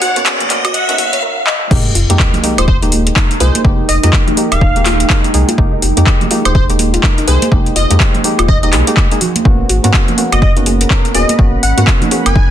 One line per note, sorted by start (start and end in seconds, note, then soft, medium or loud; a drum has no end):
0.00 0.11 G#1 medium
0.00 1.23 C#4 medium
0.00 0.07 F#4 loud
0.00 0.22 F#5 loud
0.00 1.23 G#5 medium
0.00 1.23 B5 medium
0.00 open hi-hat medium
0.00 riser medium
0.16 0.23 G#2 medium
0.16 0.48 A#3 loud
0.16 0.48 B3 loud
0.16 0.48 C#4 medium
0.16 0.48 F#4 loud
0.16 closed hi-hat medium
0.26 0.31 G#4 medium
0.26 clap loud
0.26 closed hi-hat medium
0.40 closed hi-hat soft
0.40 high conga medium
0.40 low conga medium
0.50 0.74 A#3 medium
0.50 0.74 B3 medium
0.50 0.74 C#4 medium
0.50 0.74 F#4 medium
0.50 clap soft
0.50 open hi-hat loud
0.65 1.23 F#1 loud
0.65 0.68 F#4 loud
0.65 closed hi-hat medium
0.65 high woodblock medium
0.74 0.84 F#5 medium
0.74 closed hi-hat medium
0.88 1.20 A#3 medium
0.88 1.20 B3 medium
0.88 1.20 C#4 medium
0.88 0.92 D#4 loud
0.88 1.21 F#4 medium
0.88 0.95 F#5 medium
0.88 closed hi-hat soft
0.98 1.04 F#4 loud
0.98 open hi-hat loud
0.98 high conga medium
1.13 1.18 C#5 medium
1.13 closed hi-hat medium
1.23 1.28 A#4 medium
1.47 1.50 D#5 loud
1.47 clap medium
1.71 1.89 F1 loud
1.71 1.95 G#3 loud
1.71 1.95 A#3 medium
1.71 10.26 D#4 medium
1.71 1.79 D#4 medium
1.71 1.95 D#4 medium
1.71 1.95 G4 loud
1.71 kick loud
1.71 crash loud
1.71 sub drop medium
1.95 2.05 F1 medium
1.95 2.01 F4 loud
1.95 open hi-hat loud
2.09 2.16 F2 medium
2.09 2.41 G#3 loud
2.09 10.29 G#3 medium
2.09 2.41 A#3 medium
2.09 2.41 D#4 medium
2.09 2.42 G4 loud
2.09 closed hi-hat medium
2.19 2.25 G4 medium
2.19 kick loud
2.19 clap loud
2.34 closed hi-hat soft
2.34 high conga loud
2.34 low conga medium
2.43 2.68 G#3 medium
2.43 2.68 A#3 medium
2.43 2.68 D#4 medium
2.43 2.68 G4 loud
2.43 open hi-hat loud
2.49 6.22 G5 medium
2.58 3.11 D#1 loud
2.58 2.62 F4 loud
2.58 2.64 C5 medium
2.58 closed hi-hat medium
2.58 high woodblock medium
2.68 2.77 C5 medium
2.68 kick loud
2.82 3.14 G#3 medium
2.82 3.14 A#3 medium
2.82 2.86 D#4 loud
2.82 3.14 D#4 medium
2.82 3.14 G4 medium
2.82 6.32 A#4 medium
2.82 closed hi-hat medium
2.92 2.95 G4 loud
2.92 open hi-hat loud
2.92 high conga medium
3.07 3.12 G#4 medium
3.07 closed hi-hat medium
3.16 3.38 G#3 medium
3.16 3.38 A#3 medium
3.16 3.24 D#4 medium
3.16 3.38 D#4 medium
3.16 3.38 A#4 medium
3.16 kick loud
3.16 clap loud
3.31 closed hi-hat medium
3.40 3.50 C2 medium
3.40 3.62 G#3 medium
3.40 3.62 A#3 medium
3.40 3.62 D#4 medium
3.40 3.46 F4 loud
3.40 3.63 G#4 loud
3.40 3.60 C5 loud
3.40 open hi-hat loud
3.55 closed hi-hat medium
3.55 high conga medium
3.64 3.82 F1 loud
3.64 3.89 G#3 loud
3.64 3.89 A#3 medium
3.64 3.89 D#4 medium
3.64 3.70 G4 medium
3.64 3.89 G4 loud
3.64 kick loud
3.89 3.99 F1 loud
3.89 3.98 D#5 medium
3.89 open hi-hat loud
4.03 4.10 F2 medium
4.03 4.35 G#3 loud
4.03 4.35 A#3 medium
4.03 4.35 D#4 loud
4.03 4.07 F4 loud
4.03 4.35 G4 loud
4.03 4.10 D#5 medium
4.03 closed hi-hat medium
4.13 kick loud
4.13 clap loud
4.27 4.31 D#4 loud
4.27 closed hi-hat soft
4.27 high conga loud
4.27 low conga medium
4.37 4.61 G#3 medium
4.37 4.61 A#3 medium
4.37 4.61 D#4 medium
4.37 4.41 G4 loud
4.37 4.62 G4 medium
4.37 open hi-hat loud
4.52 5.05 D#1 loud
4.52 4.57 G#4 medium
4.52 5.19 F5 loud
4.52 closed hi-hat medium
4.52 high woodblock medium
4.61 4.70 D#4 medium
4.61 kick loud
4.76 5.07 G#3 medium
4.76 5.07 A#3 medium
4.76 5.08 D#4 medium
4.76 5.08 G4 medium
4.76 closed hi-hat soft
4.86 4.91 F4 loud
4.86 clap medium
4.86 open hi-hat loud
4.86 high conga medium
5.00 closed hi-hat medium
5.09 5.31 G#3 medium
5.09 5.32 A#3 medium
5.09 5.32 D#4 medium
5.09 5.15 G4 medium
5.09 5.32 A#4 medium
5.09 kick loud
5.09 clap loud
5.24 closed hi-hat medium
5.33 5.44 C2 medium
5.33 5.56 G#3 medium
5.33 5.56 A#3 medium
5.33 5.56 D#4 medium
5.33 5.56 G#4 loud
5.33 open hi-hat loud
5.48 5.52 F4 loud
5.48 closed hi-hat medium
5.48 high conga medium
5.58 5.76 F1 loud
5.58 5.82 G#3 loud
5.58 5.82 A#3 medium
5.58 5.82 D#4 medium
5.58 5.83 G4 loud
5.58 kick loud
5.73 5.76 D#4 loud
5.82 5.92 F1 loud
5.82 5.86 G4 loud
5.82 open hi-hat loud
5.97 6.03 F2 medium
5.97 6.28 G#3 loud
5.97 6.28 A#3 loud
5.97 6.29 D#4 loud
5.97 6.29 G4 loud
5.97 6.02 G#4 medium
5.97 closed hi-hat medium
6.06 6.15 D#4 medium
6.06 10.73 G#4 medium
6.06 kick loud
6.06 clap loud
6.19 9.21 C5 medium
6.19 closed hi-hat soft
6.19 high conga loud
6.19 low conga medium
6.30 6.55 G#3 medium
6.30 6.55 A#3 medium
6.30 6.55 D#4 medium
6.30 6.36 F4 loud
6.30 6.55 G4 loud
6.30 open hi-hat loud
6.45 6.98 D#1 loud
6.45 6.52 C5 medium
6.45 closed hi-hat medium
6.45 high woodblock medium
6.55 6.60 G4 medium
6.55 6.64 C5 medium
6.55 kick loud
6.69 7.01 G#3 medium
6.69 7.01 A#3 medium
6.69 7.01 D#4 medium
6.69 7.01 G4 medium
6.69 closed hi-hat soft
6.79 open hi-hat loud
6.79 high conga medium
6.94 6.97 F4 loud
6.94 closed hi-hat medium
7.03 7.25 G#3 medium
7.03 7.25 A#3 medium
7.03 7.25 D#4 medium
7.03 7.25 A#4 medium
7.03 kick loud
7.03 clap loud
7.18 7.22 D#4 loud
7.18 closed hi-hat soft
7.27 7.37 C2 medium
7.27 7.49 G#3 medium
7.27 7.49 A#3 medium
7.27 7.49 D#4 medium
7.27 7.31 G4 loud
7.27 7.50 G#4 loud
7.27 7.48 C5 medium
7.27 open hi-hat loud
7.42 7.48 G#4 medium
7.42 closed hi-hat medium
7.42 high conga loud
7.51 7.70 F1 loud
7.51 7.76 G#3 loud
7.51 7.76 A#3 medium
7.51 7.60 D#4 medium
7.51 7.76 D#4 medium
7.51 7.76 G4 loud
7.51 kick loud
7.66 closed hi-hat soft
7.76 7.86 F1 loud
7.76 7.81 F4 loud
7.76 7.96 D#5 medium
7.76 open hi-hat loud
7.90 7.97 F2 medium
7.90 8.22 G#3 loud
7.90 8.22 A#3 medium
7.90 8.22 D#4 medium
7.90 8.22 G4 loud
7.90 closed hi-hat medium
8.00 8.06 G4 medium
8.00 kick loud
8.00 clap loud
8.14 closed hi-hat soft
8.14 high conga loud
8.14 low conga medium
8.24 8.48 G#3 medium
8.24 8.48 A#3 medium
8.24 8.49 D#4 medium
8.24 8.49 G4 loud
8.24 open hi-hat loud
8.39 8.74 D#1 loud
8.39 8.43 F4 loud
8.39 closed hi-hat medium
8.39 high woodblock medium
8.48 8.58 D#5 medium
8.48 kick loud
8.63 8.71 G#3 medium
8.63 8.71 A#3 medium
8.63 8.67 D#4 loud
8.63 8.71 D#4 medium
8.63 8.71 G4 medium
8.63 8.69 D#5 medium
8.63 closed hi-hat soft
8.72 8.82 C2 loud
8.72 8.85 G#3 medium
8.72 8.85 A#3 medium
8.72 8.85 D#4 medium
8.72 8.76 G4 loud
8.72 8.85 G#4 loud
8.72 clap medium
8.72 open hi-hat loud
8.72 high conga medium
8.87 9.08 G#3 loud
8.87 9.08 A#3 medium
8.87 9.08 D#4 medium
8.87 9.08 G4 loud
8.87 8.93 G#4 medium
8.87 closed hi-hat medium
8.97 9.05 D#4 medium
8.97 kick loud
8.97 clap loud
9.11 9.20 G#3 loud
9.11 9.20 A#3 medium
9.11 9.20 D#4 medium
9.11 9.20 G#4 loud
9.11 closed hi-hat medium
9.21 12.51 C#4 medium
9.21 9.27 F#4 loud
9.21 open hi-hat loud
9.21 low conga medium
9.36 closed hi-hat medium
9.36 high conga medium
9.44 9.63 G#1 loud
9.44 9.69 A#3 loud
9.44 9.69 B3 medium
9.44 9.70 C#4 medium
9.44 9.53 D#4 medium
9.44 9.70 F#4 loud
9.44 12.51 B5 medium
9.44 kick loud
9.54 12.51 F#5 medium
9.69 9.79 G#1 loud
9.69 9.75 F#4 loud
9.69 open hi-hat loud
9.84 9.90 G#2 medium
9.84 10.15 A#3 loud
9.84 10.15 B3 loud
9.84 10.16 C#4 medium
9.84 10.16 F#4 loud
9.84 closed hi-hat medium
9.94 9.99 G#4 medium
9.94 kick loud
9.94 clap loud
10.08 closed hi-hat soft
10.08 high conga loud
10.08 low conga medium
10.17 10.42 A#3 medium
10.17 10.42 B3 medium
10.17 10.42 C#4 medium
10.17 10.42 F#4 loud
10.17 open hi-hat loud
10.32 10.85 F#1 loud
10.32 10.36 F#4 loud
10.32 10.39 D#5 medium
10.32 closed hi-hat medium
10.32 high woodblock medium
10.42 10.51 D#5 medium
10.42 kick loud
10.56 10.88 A#3 medium
10.56 10.88 B3 medium
10.56 10.88 C#4 medium
10.56 10.60 D#4 loud
10.56 10.88 F#4 medium
10.56 closed hi-hat soft
10.66 10.70 G#4 loud
10.66 open hi-hat loud
10.66 high conga medium
10.81 10.86 A#4 medium
10.81 closed hi-hat medium
10.90 11.12 A#3 medium
10.90 11.12 B3 medium
10.90 11.12 C#4 medium
10.90 10.99 D#4 medium
10.90 11.13 A#4 medium
10.90 kick loud
10.90 clap loud
11.05 closed hi-hat soft
11.14 11.24 D#1 medium
11.14 11.36 A#3 medium
11.14 11.36 B3 medium
11.14 11.37 C#4 medium
11.14 11.20 F#4 loud
11.14 11.37 G#4 medium
11.14 11.35 D#5 loud
11.14 open hi-hat loud
11.29 closed hi-hat medium
11.29 high conga medium
11.38 11.57 G#1 loud
11.38 11.63 A#3 loud
11.38 11.63 B3 medium
11.38 11.63 C#4 medium
11.38 11.63 F#4 loud
11.38 11.44 G#4 medium
11.38 kick loud
11.63 11.73 G#1 medium
11.63 11.72 F#5 medium
11.63 open hi-hat loud
11.77 11.84 G#2 medium
11.77 12.09 A#3 loud
11.77 12.09 B3 loud
11.77 12.09 C#4 medium
11.77 11.81 F#4 loud
11.77 12.09 F#4 loud
11.77 11.84 F#5 medium
11.77 closed hi-hat medium
11.87 kick loud
11.87 clap loud
12.01 12.05 D#4 loud
12.01 closed hi-hat soft
12.01 high conga loud
12.01 low conga medium
12.11 12.35 A#3 medium
12.11 12.35 B3 medium
12.11 12.36 C#4 medium
12.11 12.36 F#4 loud
12.11 12.15 G#4 loud
12.11 open hi-hat loud
12.26 12.51 F#1 loud
12.26 12.31 A#4 medium
12.26 12.51 G#5 loud
12.26 closed hi-hat medium
12.26 high woodblock medium
12.36 12.44 D#4 medium
12.36 kick loud